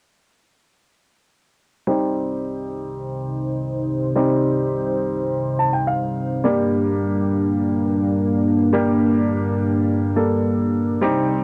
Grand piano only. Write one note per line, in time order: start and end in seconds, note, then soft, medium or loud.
1.87 4.12 G3 medium
1.87 4.12 C4 medium
1.87 4.12 D#4 medium
1.87 4.13 G4 medium
4.16 6.41 G3 medium
4.16 6.41 C4 medium
4.16 6.41 D#4 medium
4.16 6.41 G4 medium
5.59 5.72 A5 medium
5.73 5.87 G5 medium
5.87 6.41 F5 medium
6.44 8.69 G3 medium
6.44 8.69 A#3 medium
6.44 8.69 D4 medium
6.44 8.70 G4 medium
8.73 10.13 G3 medium
8.73 10.13 A#3 medium
8.73 10.13 D4 medium
8.73 10.14 G4 medium
10.16 11.00 G3 soft
10.16 11.02 A#3 soft
10.16 11.02 D4 soft
10.16 11.02 A4 medium
11.01 11.44 G3 medium
11.01 11.44 C4 medium
11.01 11.44 D#4 medium
11.01 11.44 G4 medium